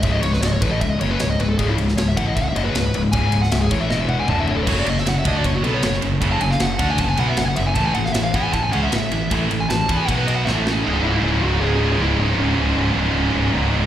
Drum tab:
CC |----------------|----------------|----------------|x---------------|
RD |x-x-x-x-x-x-x-x-|x-x-x-x-x-x-x-x-|x-x-x-x---------|--x-x-x-x-x-x-x-|
SD |---oo-------o---|---oo-------o---|---oo---o-------|---oo-------oo--|
T1 |----------------|----------------|----------o-----|----------------|
T2 |----------------|----------------|------------o---|----------------|
FT |----------------|----------------|--------------o-|----------------|
BD |o-----o-o-------|o-----o-o-------|o-----o---------|o-----o-o-------|

CC |----------------|----------------|----------------|----------------|
RD |x-x-x-x-x-x-x-x-|x-x-x-x-x-x-x-x-|x-x-x-x-x-x-----|----------------|
SD |---oo-------o---|---oo-------o---|----o-------o-o-|----------------|
T1 |----------------|----------------|----------------|----------------|
T2 |----------------|----------------|----------------|----------------|
FT |----------------|----------------|----------------|----------------|
BD |o-----o-o-------|o-----o-o-------|o-----o-o-------|----------------|

CC |----------------|
RD |----------------|
SD |----------------|
T1 |----------------|
T2 |----------------|
FT |----------------|
BD |----------------|